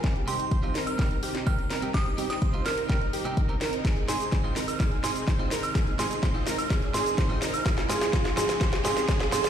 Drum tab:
HH |xxoxxxoxxxoxxxox|xxoxxxoxxxoxxxox|xxoxxxoxxxoxxxox|xxoxxxoxxxoxxxox|
SH |----------------|----------------|x-xxx-xxx-xxx-xx|x-xxx-xxx-xxx-xx|
SD |o-----o-o--o--o-|o--o--o-o-----o-|o-o-o-o-o-o-o-o-|o-o-o-o-o-o-o-o-|
BD |o---o---o---o---|o---o---o---o---|o---o---o---o---|o---o---o---o---|

HH |xxoxxxoxxxoxxxox|
SH |x-xxx-xxx-xxx-xx|
SD |oooooooooooooooo|
BD |o---o---o---o---|